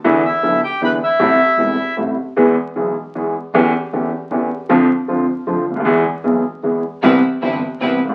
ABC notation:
X:1
M:3/4
L:1/16
Q:1/4=155
K:Ephr
V:1 name="Bandoneon"
z2 [Ee]4 [Gg]2 [Bb]2 [Ee]2- | [Ee]8 z4 | z12 | z12 |
z12 | z12 | z12 |]
V:2 name="String section"
z12 | z12 | z12 | z12 |
z12 | z12 | [CEB]2 z2 [CEB]2 z2 [CEB]2 z2 |]
V:3 name="Upright piano" clef=bass
[E,,D,E,A,B,E]2 z2 [B,,,B,,D,A,B,E]2 z2 [E,,D,E,^G,B,E]2 z2 | [A,,,A,,C,G,A,E]2 z2 [E,,,E,,C,G,A,E]2 z2 [A,,,A,,C,G,A,E]2 z2 | [E,,E,^G,B,^G]2 z2 [B,,,B,,E,G,B,G]2 z2 [E,,E,G,B,G]2 z2 | [E,,E,A,^CG]2 z2 [E,,E,A,CG]2 z2 [E,,E,A,CG]2 z2 |
[F,,D,F,A,CF]2 z2 [F,,D,F,A,CF]2 z2 [F,,D,F,A,CF]2 z/2 ^C,,/2 D,,/2 ^D,,/2 | [E,,E,^G,B,^G]2 z2 [B,,,B,,E,G,B,G]2 z2 [E,,E,G,B,G]2 z2 | [C,,C,E,B,CG]2 z2 [G,,,G,,E,B,CG]2 z2 [C,,C,E,B,CG]2 z/2 ^G,,,/2 A,,,/2 z/2 |]
V:4 name="Double bass" clef=bass
E,,2 z2 B,,,2 z2 E,,2 z2 | A,,,2 z2 E,,,2 z2 A,,,2 z2 | E,,2 z2 B,,,2 z2 E,,2 z2 | E,,2 z2 E,,2 z2 E,,2 z2 |
F,,2 z2 F,,2 z2 F,,2 D,,2 | E,,2 z2 B,,,2 z2 E,,2 z2 | C,,2 z2 G,,,2 z2 C,,2 A,,,2 |]